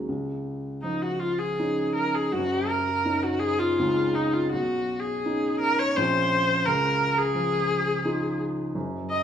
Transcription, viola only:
0.82 1.03 D#4 medium
1.02 1.21 F#4 medium
1.19 1.40 F4 medium
1.38 1.95 G#4 medium
1.95 2.16 A#4 medium
2.15 2.33 G#4 medium
2.32 2.69 F#4 medium
2.68 3.24 A#4 medium
3.23 3.41 F#4 medium
3.39 3.60 G#4 medium
3.59 4.16 F4 medium
4.15 4.35 D#4 medium
4.33 4.51 F4 medium
4.51 5.01 F#4 medium
4.99 5.59 G#4 medium
5.60 5.80 A#4 medium
5.79 5.98 C#5 medium
5.97 6.67 C5 medium
6.65 7.19 A#4 medium
7.18 8.40 G#4 medium
9.10 9.23 D#5 medium

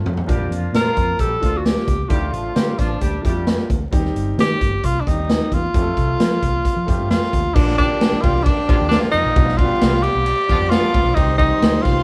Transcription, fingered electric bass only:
0.05 0.22 F2 medium
0.29 0.45 A#1 medium
0.49 0.67 F2 medium
0.73 0.90 A#2 medium
0.97 1.13 F2 medium
1.19 1.36 A#1 medium
1.42 1.76 D2 medium
1.87 2.04 C#2 medium
2.10 2.32 D2 medium
2.32 2.49 A1 medium
2.56 2.73 D3 medium
2.79 2.96 A1 medium
3.01 3.18 D2 medium
3.25 3.57 F2 medium
3.69 3.86 D2 medium
3.92 4.09 D#2 loud
4.15 4.32 G1 medium
4.38 4.54 D#3 medium
4.61 4.77 G1 medium
4.83 5.00 C2 medium
5.07 5.39 D#2 medium
5.52 5.68 E2 medium
5.74 5.91 F2 medium
5.97 6.13 C2 medium
6.20 6.36 F3 medium
6.42 6.59 C2 medium
6.76 6.84 F3 medium
6.88 6.96 F2 medium
6.99 7.07 G2 medium
7.10 7.18 F2 medium
7.33 7.41 D#2 medium
7.44 7.53 D2 medium
7.56 7.88 A#1 loud
8.12 muted fingered electric bass stroke medium
8.24 8.48 C2 medium
8.69 8.77 A#1 medium
8.80 8.97 D#2 medium
9.14 9.22 F2 loud
9.24 9.33 A#1 loud
9.36 9.69 B1 loud
9.82 10.06 C2 medium
10.15 10.31 B1 medium
10.49 10.57 D#2 loud
10.60 10.76 F2 medium
10.94 11.02 D2 loud
11.05 11.14 B1 loud
11.62 11.78 D2 medium
11.85 12.03 C2 medium

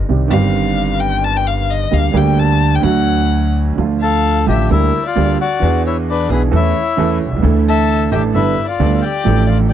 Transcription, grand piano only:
0.09 0.28 C2 medium
0.09 0.28 C3 medium
0.09 0.26 D#3 soft
0.09 0.27 G3 soft
0.09 0.28 C4 soft
0.09 0.29 G4 medium
0.28 1.84 G1 medium
0.28 1.83 G2 medium
0.28 1.82 D#3 medium
0.28 1.83 G3 medium
0.28 1.84 C4 medium
0.32 1.84 G4 medium
1.91 2.11 D2 medium
1.91 2.10 D3 medium
1.91 2.11 G3 soft
1.91 2.11 A#3 soft
1.91 2.11 G4 medium
2.11 2.80 D2 medium
2.11 2.13 D3 medium
2.11 2.79 D3 medium
2.11 2.80 G3 medium
2.11 2.80 A#3 medium
2.15 2.81 G4 medium
2.80 3.72 D2 medium
2.80 3.72 D3 medium
2.80 3.72 F#3 medium
2.80 3.73 A3 medium
2.85 3.74 F#4 medium
3.75 4.44 D2 medium
3.75 3.77 D3 medium
3.75 4.44 D3 medium
3.75 4.44 F3 medium
3.75 4.44 A3 medium
3.80 4.45 F4 medium
4.46 4.66 A1 medium
4.46 4.66 A2 medium
4.46 4.66 D3 medium
4.46 4.66 F3 medium
4.46 4.66 A3 medium
4.46 4.67 F4 medium
4.70 4.90 D2 medium
4.70 4.90 D3 medium
4.70 4.90 G3 medium
4.70 4.90 A#3 medium
4.70 4.90 G4 medium
5.15 5.35 D2 medium
5.15 5.36 D3 medium
5.15 5.36 G3 medium
5.15 5.36 A#3 medium
5.15 5.36 G4 medium
5.60 6.27 E2 medium
5.60 6.27 E3 medium
5.60 6.26 B3 medium
5.60 6.27 D4 medium
5.60 6.28 G#4 medium
6.29 6.49 B1 medium
6.29 6.49 B2 medium
6.29 6.49 E3 medium
6.29 6.49 B3 medium
6.29 6.49 D4 medium
6.29 6.49 G#4 medium
6.51 6.72 E2 medium
6.51 6.72 E3 medium
6.51 6.71 A3 medium
6.51 6.72 C#4 medium
6.51 6.72 A4 medium
6.97 7.17 E2 medium
6.97 7.17 E3 medium
6.97 7.17 A3 medium
6.97 7.17 C#4 medium
6.97 7.18 A4 medium
7.26 7.32 B1 soft
7.31 7.37 C2 medium
7.36 7.43 C#2 medium
7.41 8.08 D2 medium
7.41 8.08 D3 medium
7.41 8.07 E3 medium
7.41 8.08 A3 medium
7.41 8.08 D4 medium
7.41 8.09 A4 medium
8.11 8.31 A1 medium
8.11 8.30 A2 medium
8.11 8.30 E3 medium
8.11 8.30 A3 medium
8.11 8.31 D4 medium
8.11 8.31 A4 medium
8.35 8.54 G1 medium
8.35 8.53 G2 medium
8.35 8.53 G3 medium
8.35 8.53 B3 medium
8.35 8.54 D4 medium
8.35 8.54 A4 medium
8.79 8.99 D2 medium
8.79 8.99 D3 medium
8.79 8.99 G3 medium
8.79 8.99 B3 medium
8.79 8.99 D4 medium
8.79 8.99 A4 medium
9.24 9.73 A1 medium
9.24 9.73 A2 medium
9.24 9.73 F3 medium
9.24 9.73 A3 medium
9.24 9.73 D4 medium
9.24 9.73 A4 medium

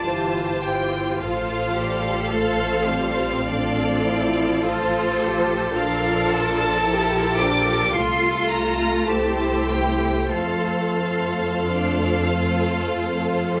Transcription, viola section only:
0.05 0.61 E3 soft
0.05 1.18 G4 soft
0.63 1.19 E3 soft
1.20 1.76 F3 soft
1.20 2.31 F4 soft
1.75 2.32 G3 soft
2.33 2.91 A3 soft
2.33 3.46 F4 soft
2.91 3.48 G3 soft
3.48 6.85 F3 soft
3.48 4.05 D4 soft
4.05 4.63 E4 soft
4.63 5.20 F4 soft
5.20 5.76 G4 soft
5.75 6.86 F4 soft
6.86 7.94 F3 soft
6.86 7.40 E4 soft
7.41 7.96 D4 soft
7.95 10.32 A3 soft
7.95 9.10 F4 soft
9.11 10.34 E4 soft
10.34 13.60 A3 soft
10.34 13.60 F4 soft

